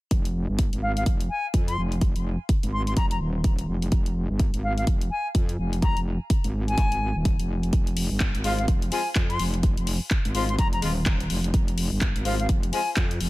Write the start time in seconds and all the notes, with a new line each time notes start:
0.11 F1, kick, closed hi-hat
0.25 closed hi-hat
0.49 G1
0.59 kick, closed hi-hat
0.73 G#1, closed hi-hat
0.82 F5
0.97 F5, closed hi-hat
1.06 F1, kick, closed hi-hat
1.21 closed hi-hat
1.30 G#5
1.54 F2, kick, closed hi-hat
1.68 C6, closed hi-hat
1.78 F1
1.92 closed hi-hat
2.01 kick, closed hi-hat
2.16 F1, closed hi-hat
2.49 kick, closed hi-hat
2.63 G#1, closed hi-hat
2.73 C6
2.87 C6, closed hi-hat
2.97 F1 A#5, kick, closed hi-hat
3.11 A#5, closed hi-hat
3.20 D#1
3.44 kick, closed hi-hat
3.59 closed hi-hat
3.68 F1
3.82 closed hi-hat
3.92 F1, kick, closed hi-hat
4.06 closed hi-hat
4.30 G1
4.39 kick, closed hi-hat
4.54 G#1, closed hi-hat
4.63 F5
4.78 F5, closed hi-hat
4.87 F1, kick, closed hi-hat
5.01 closed hi-hat
5.11 G#5
5.35 F2, kick, closed hi-hat
5.49 closed hi-hat
5.59 F1
5.73 closed hi-hat
5.82 A#5, kick, closed hi-hat
5.97 F1, closed hi-hat
6.30 kick, closed hi-hat
6.44 G#1, closed hi-hat
6.68 G#5, closed hi-hat
6.78 G#1, kick, closed hi-hat
6.92 closed hi-hat
7.16 D#1
7.25 kick, closed hi-hat
7.39 F1, closed hi-hat
7.63 closed hi-hat
7.73 F1, kick, closed hi-hat
7.87 closed hi-hat
7.97 open hi-hat
8.11 G1
8.20 kick, clap, closed hi-hat
8.35 G#1, closed hi-hat
8.44 F3 G#3 C4 F4 F5, open hi-hat
8.59 F5, closed hi-hat
8.68 F1, kick, closed hi-hat
8.82 closed hi-hat
8.92 F3 G#3 C4 F4 G#5, open hi-hat
9.15 F2, kick, clap, closed hi-hat
9.30 C6, closed hi-hat
9.39 F1, open hi-hat
9.54 closed hi-hat
9.63 kick, closed hi-hat
9.77 F1, closed hi-hat
9.87 open hi-hat
10.11 kick, clap, closed hi-hat
10.25 G#1, closed hi-hat
10.35 F3 G#3 C4 F4 C6, open hi-hat
10.49 C6, closed hi-hat
10.59 F1 A#5, kick, closed hi-hat
10.73 A#5, closed hi-hat
10.82 D#1 F3 G#3 C4 F4, open hi-hat
11.06 kick, clap, closed hi-hat
11.20 closed hi-hat
11.30 F1, open hi-hat
11.44 closed hi-hat
11.54 F1, kick, closed hi-hat
11.68 closed hi-hat
11.78 open hi-hat
11.92 G1
12.01 kick, clap, closed hi-hat
12.16 G#1, closed hi-hat
12.25 F3 G#3 C4 F4 F5, open hi-hat
12.40 F5, closed hi-hat
12.49 F1, kick, closed hi-hat
12.63 closed hi-hat
12.73 F3 G#3 C4 F4 G#5, open hi-hat
12.96 F2, kick, clap, closed hi-hat
13.11 closed hi-hat
13.21 F1, open hi-hat